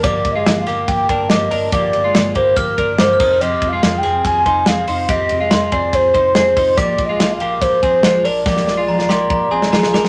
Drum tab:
CC |----------------|--------------x-|----------------|----------------|
RD |x-x-x-x-x-x-x-x-|x-x-x-x-x-x-x---|x-x-x-x-x-x-x-x-|x-x-x-x-x-x-x-x-|
HH |p-------------o-|p---------------|p-------------o-|p-------------o-|
SD |----o-o-----o---|----o-------o---|----o-o-----o---|----o-------o---|
BD |o-o-----o-o-----|o-----o-o-o---o-|--o-----o-o-----|o-----o-o-o---o-|

CC |----------------|----------------|
RD |x-x-x-x-x-x-x-x-|----------------|
HH |p-------------o-|----------------|
SD |----o-------o---|ooo--oo----ooooo|
BD |o-o-----o-o-----|o-------o-------|